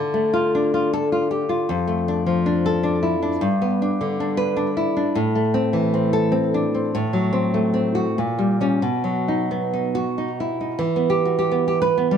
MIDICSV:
0, 0, Header, 1, 2, 480
1, 0, Start_track
1, 0, Tempo, 578035
1, 1422, Time_signature, 3, 2, 24, 8
1, 4784, Tempo, 595238
1, 6224, Tempo, 651466
1, 8624, Tempo, 597610
1, 9724, End_track
2, 0, Start_track
2, 0, Title_t, "Nylon-string guitar"
2, 0, Program_c, 0, 24
2, 0, Note_on_c, 0, 50, 68
2, 114, Note_on_c, 0, 57, 49
2, 278, Note_on_c, 0, 65, 57
2, 455, Note_on_c, 0, 62, 48
2, 603, Note_off_c, 0, 65, 0
2, 613, Note_on_c, 0, 65, 55
2, 773, Note_off_c, 0, 65, 0
2, 776, Note_on_c, 0, 69, 67
2, 856, Note_off_c, 0, 57, 0
2, 929, Note_off_c, 0, 69, 0
2, 932, Note_on_c, 0, 65, 46
2, 1082, Note_off_c, 0, 65, 0
2, 1085, Note_on_c, 0, 67, 51
2, 1180, Note_off_c, 0, 62, 0
2, 1239, Note_on_c, 0, 65, 52
2, 1378, Note_off_c, 0, 50, 0
2, 1404, Note_on_c, 0, 41, 76
2, 1410, Note_off_c, 0, 65, 0
2, 1412, Note_off_c, 0, 67, 0
2, 1556, Note_on_c, 0, 57, 51
2, 1729, Note_on_c, 0, 62, 59
2, 1881, Note_on_c, 0, 53, 52
2, 2032, Note_off_c, 0, 62, 0
2, 2042, Note_on_c, 0, 62, 54
2, 2206, Note_on_c, 0, 69, 75
2, 2286, Note_off_c, 0, 57, 0
2, 2343, Note_off_c, 0, 62, 0
2, 2353, Note_on_c, 0, 62, 54
2, 2468, Note_off_c, 0, 69, 0
2, 2513, Note_on_c, 0, 64, 48
2, 2609, Note_off_c, 0, 53, 0
2, 2668, Note_off_c, 0, 62, 0
2, 2678, Note_on_c, 0, 62, 52
2, 2814, Note_off_c, 0, 41, 0
2, 2833, Note_on_c, 0, 43, 75
2, 2845, Note_off_c, 0, 64, 0
2, 2847, Note_off_c, 0, 62, 0
2, 3003, Note_on_c, 0, 59, 58
2, 3171, Note_on_c, 0, 62, 53
2, 3328, Note_on_c, 0, 50, 50
2, 3479, Note_off_c, 0, 62, 0
2, 3489, Note_on_c, 0, 62, 59
2, 3631, Note_on_c, 0, 71, 82
2, 3728, Note_off_c, 0, 59, 0
2, 3780, Note_off_c, 0, 62, 0
2, 3790, Note_on_c, 0, 62, 58
2, 3901, Note_off_c, 0, 71, 0
2, 3959, Note_on_c, 0, 64, 57
2, 4056, Note_off_c, 0, 50, 0
2, 4114, Note_off_c, 0, 62, 0
2, 4124, Note_on_c, 0, 62, 54
2, 4257, Note_off_c, 0, 43, 0
2, 4280, Note_on_c, 0, 45, 76
2, 4293, Note_off_c, 0, 64, 0
2, 4294, Note_off_c, 0, 62, 0
2, 4446, Note_on_c, 0, 57, 55
2, 4601, Note_on_c, 0, 60, 64
2, 4759, Note_on_c, 0, 52, 56
2, 4916, Note_off_c, 0, 60, 0
2, 4926, Note_on_c, 0, 60, 58
2, 5081, Note_on_c, 0, 69, 83
2, 5170, Note_off_c, 0, 57, 0
2, 5223, Note_off_c, 0, 60, 0
2, 5232, Note_on_c, 0, 60, 58
2, 5348, Note_off_c, 0, 69, 0
2, 5415, Note_on_c, 0, 62, 55
2, 5492, Note_off_c, 0, 52, 0
2, 5567, Note_off_c, 0, 60, 0
2, 5577, Note_on_c, 0, 60, 54
2, 5702, Note_off_c, 0, 45, 0
2, 5740, Note_on_c, 0, 45, 82
2, 5742, Note_off_c, 0, 60, 0
2, 5742, Note_off_c, 0, 62, 0
2, 5890, Note_on_c, 0, 54, 51
2, 6046, Note_on_c, 0, 60, 61
2, 6218, Note_on_c, 0, 57, 53
2, 6354, Note_off_c, 0, 60, 0
2, 6363, Note_on_c, 0, 60, 57
2, 6520, Note_on_c, 0, 66, 73
2, 6600, Note_off_c, 0, 54, 0
2, 6656, Note_off_c, 0, 45, 0
2, 6682, Note_off_c, 0, 60, 0
2, 6682, Note_off_c, 0, 66, 0
2, 6684, Note_off_c, 0, 57, 0
2, 6691, Note_on_c, 0, 46, 60
2, 6842, Note_on_c, 0, 55, 55
2, 6995, Note_off_c, 0, 55, 0
2, 7004, Note_on_c, 0, 55, 44
2, 7009, Note_on_c, 0, 61, 64
2, 7151, Note_off_c, 0, 55, 0
2, 7153, Note_off_c, 0, 61, 0
2, 7156, Note_off_c, 0, 46, 0
2, 7163, Note_on_c, 0, 47, 68
2, 7323, Note_on_c, 0, 54, 43
2, 7503, Note_on_c, 0, 63, 50
2, 7670, Note_on_c, 0, 59, 46
2, 7827, Note_off_c, 0, 63, 0
2, 7836, Note_on_c, 0, 63, 49
2, 7994, Note_on_c, 0, 66, 68
2, 8061, Note_off_c, 0, 54, 0
2, 8154, Note_off_c, 0, 63, 0
2, 8163, Note_on_c, 0, 63, 46
2, 8249, Note_off_c, 0, 66, 0
2, 8328, Note_on_c, 0, 64, 44
2, 8396, Note_off_c, 0, 59, 0
2, 8469, Note_off_c, 0, 63, 0
2, 8478, Note_on_c, 0, 63, 42
2, 8590, Note_off_c, 0, 47, 0
2, 8611, Note_on_c, 0, 52, 73
2, 8626, Note_off_c, 0, 63, 0
2, 8631, Note_off_c, 0, 64, 0
2, 8749, Note_on_c, 0, 59, 54
2, 8859, Note_on_c, 0, 67, 58
2, 8986, Note_on_c, 0, 66, 50
2, 9082, Note_off_c, 0, 67, 0
2, 9091, Note_on_c, 0, 67, 59
2, 9185, Note_off_c, 0, 59, 0
2, 9195, Note_on_c, 0, 59, 60
2, 9315, Note_off_c, 0, 67, 0
2, 9324, Note_on_c, 0, 67, 54
2, 9434, Note_off_c, 0, 67, 0
2, 9437, Note_on_c, 0, 71, 76
2, 9555, Note_off_c, 0, 59, 0
2, 9565, Note_on_c, 0, 59, 54
2, 9641, Note_off_c, 0, 71, 0
2, 9675, Note_on_c, 0, 55, 59
2, 9704, Note_off_c, 0, 66, 0
2, 9724, Note_off_c, 0, 52, 0
2, 9724, Note_off_c, 0, 55, 0
2, 9724, Note_off_c, 0, 59, 0
2, 9724, End_track
0, 0, End_of_file